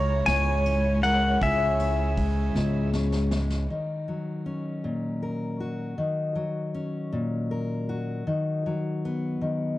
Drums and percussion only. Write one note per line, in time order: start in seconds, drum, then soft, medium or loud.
0.28 snare medium
0.28 ride medium
0.66 ride soft
1.04 ride soft
1.42 kick medium
1.42 ride medium
1.79 ride soft
2.17 kick medium
2.17 ride soft
2.56 snare soft
2.93 snare medium
3.12 snare medium
3.31 snare medium
3.50 snare medium